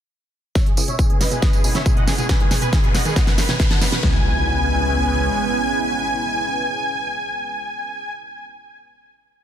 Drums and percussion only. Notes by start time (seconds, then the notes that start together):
0.55 kick, snare, closed hi-hat, tambourine
0.66 closed hi-hat
0.77 open hi-hat, tambourine
0.88 closed hi-hat, tambourine
0.99 kick, closed hi-hat, tambourine
1.10 closed hi-hat
1.21 snare, open hi-hat, tambourine
1.32 closed hi-hat, tambourine
1.42 kick, snare, closed hi-hat, tambourine
1.53 closed hi-hat, tambourine
1.64 open hi-hat, tambourine
1.75 snare, closed hi-hat, tambourine
1.86 kick, closed hi-hat, tambourine
1.97 closed hi-hat
2.07 snare, open hi-hat, tambourine
2.18 closed hi-hat, tambourine
2.29 kick, snare, closed hi-hat, tambourine
2.40 closed hi-hat
2.51 snare, open hi-hat, tambourine
2.62 closed hi-hat, tambourine
2.73 kick, snare, closed hi-hat, tambourine
2.84 closed hi-hat
2.95 snare, open hi-hat, tambourine
3.05 closed hi-hat, tambourine
3.16 kick, snare, closed hi-hat, tambourine
3.27 snare, closed hi-hat, tambourine
3.38 snare, open hi-hat, tambourine
3.49 snare, closed hi-hat, tambourine
3.60 kick, snare, closed hi-hat, tambourine
3.71 snare, closed hi-hat
3.81 snare, open hi-hat, tambourine
3.92 snare, closed hi-hat, tambourine
4.03 kick, snare